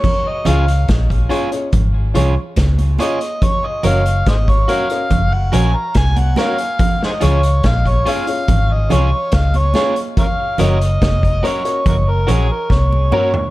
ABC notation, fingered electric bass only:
X:1
M:4/4
L:1/16
Q:1/4=71
K:Db
V:1 name="Fingered electric bass" clef=bass
z2 D,,2 B,,,2 z2 A,,,2 C,, z D,,2 z2 | z2 G,,,2 A,,,2 z2 G,,,2 B,,, z C,,2 z2 | z2 D,,2 B,,,2 z2 A,,,2 C,, z D,,2 z2 | z2 G,,,2 F,,,2 z2 G,,,2 B,,, z C,,2 z2 |]